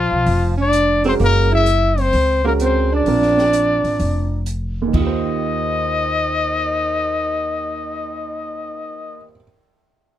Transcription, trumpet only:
Already playing: F4
0.61 D5
1.08 C5
1.24 A#4
1.55 E5
2.01 C5
2.48 A#4
2.63 C5
2.95 D5
4.95 D#5

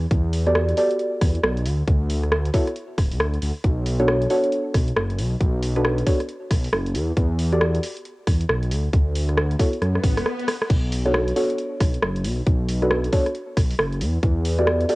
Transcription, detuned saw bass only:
0.11 E2
1.21 E2
1.43 B1
1.65 D2
1.88 D2
2.98 D1
3.11 D2
3.42 D2
3.64 B1
4.74 B1
4.96 F#1
5.18 B1
5.40 B1
6.51 B1
6.73 F#1
6.95 E2
7.17 E2
8.27 E2
8.49 B1
8.71 D2
8.93 D2
9.82 F#2
10.04 A1
10.17 D1
10.70 B1
11.80 B1
12.02 F#1
12.24 B1
12.46 B1
13.57 B1
13.79 F#1
14.01 E2
14.23 E2

